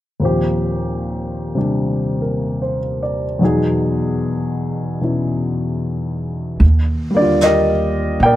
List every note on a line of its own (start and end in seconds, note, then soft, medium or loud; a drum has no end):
0.20 3.40 D#2 soft
0.20 3.41 A#2 soft
0.20 3.41 F3 soft
0.20 3.42 C4 soft
0.25 1.57 G4 soft
1.55 3.41 C3 soft
1.55 3.41 G3 soft
1.55 3.42 D4 soft
1.55 3.42 G4 soft
2.22 2.77 A#4 soft
2.62 3.24 C5 soft
3.03 3.57 D5 soft
3.39 6.60 E2 soft
3.39 5.00 B2 soft
3.39 6.61 F#3 soft
3.39 6.61 D#4 soft
3.45 6.62 G#4 medium
5.01 6.61 B2 soft
5.01 6.61 E3 soft
5.01 6.61 C#4 soft
5.01 6.62 E4 soft
6.60 8.16 D#2 medium
6.60 brush sweep soft
7.11 8.36 G3 soft
7.11 8.36 A#3 soft
7.17 8.36 D3 soft
7.17 7.42 D5 medium
7.21 8.36 F4 soft
7.41 8.23 A#4 medium
7.41 8.18 D#5 medium
7.41 snare soft
7.41 hi-hat pedal soft
7.46 8.36 G4 medium
8.20 8.36 A#2 medium
8.20 8.36 G5 medium
8.20 brush sweep soft
8.25 8.36 A#4 medium
8.25 8.36 D5 medium